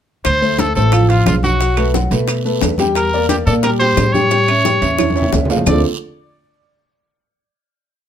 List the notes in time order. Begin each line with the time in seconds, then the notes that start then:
0.25 D2 C5, high bongo, high conga, high timbale, long guiro, claves, maracas
0.41 A3 A4 C5, high conga, maracas
0.58 A4, high bongo, high conga, high timbale, low timbale, short guiro, maracas
0.75 A1 A3 A4 C5, high conga, short guiro, maracas
0.92 F3 F4 F5, high bongo, high conga, high timbale, long guiro, claves, maracas
1.09 F3 F4 F5, high conga, high timbale, maracas
1.26 B1 F4, high bongo, low bongo, high conga, high timbale, low timbale, short guiro, claves, maracas
1.43 F#3 F#4 F#5, high conga, short guiro, maracas
1.60 F#3 F#4 F#5, high bongo, high conga, high timbale, long guiro, maracas
1.77 A3 A4 B4, high bongo, high conga, high timbale, claves, maracas
1.94 F#3 F#4 F#5, high bongo, high conga, low timbale, short guiro, maracas
2.11 B2 A3 A4 B4, high bongo, high conga, high timbale, short guiro, maracas
2.28 high bongo, high conga, high timbale, long guiro, claves, maracas
2.45 A3 A4 B4, high conga, maracas
2.61 E2, high bongo, low bongo, high conga, high timbale, low timbale, short guiro, maracas
2.78 G3 G4 G5, high bongo, high conga, high timbale, short guiro, maracas
2.95 A#4, high bongo, high conga, high timbale, long guiro, claves, maracas
3.13 A#3 A#4 D5, high conga, maracas
3.29 G4, high bongo, high conga, high timbale, low timbale, short guiro, maracas
3.46 A#2 A#3 A4 A#4 D5, high conga, short guiro, maracas
3.63 G3 G4 A#4 G5, high bongo, high conga, high timbale, long guiro, claves, maracas
3.79 G3 G4 C5 G5, high conga, high timbale, maracas
3.97 A2, high bongo, low bongo, high conga, high timbale, low timbale, short guiro, claves, maracas
4.13 G3 G4 C#5 G5, high conga, short guiro, maracas
4.31 G3 G4 G5, high bongo, high conga, high timbale, long guiro, maracas
4.48 C#4 C#5 E5, high bongo, high conga, high timbale, claves, maracas
4.64 G3 G4 G5, high bongo, high conga, low timbale, short guiro, maracas
4.81 E2 C#4 C#5 E5, high bongo, high conga, high timbale, short guiro, maracas
4.99 high bongo, high conga, high timbale, long guiro, claves, maracas
5.10 high conga
5.16 C#4 C#5 E5, high timbale, maracas
5.22 low conga
5.33 D2, high bongo, low bongo, low conga, low timbale, short guiro, maracas
5.45 low conga
5.50 F3 F4 F5, high bongo, low timbale, short guiro, maracas
5.57 low conga
5.66 D2 D3 A3 C4 D4 F4 A4 D5, low bongo, low conga, low timbale, long guiro, claves, maracas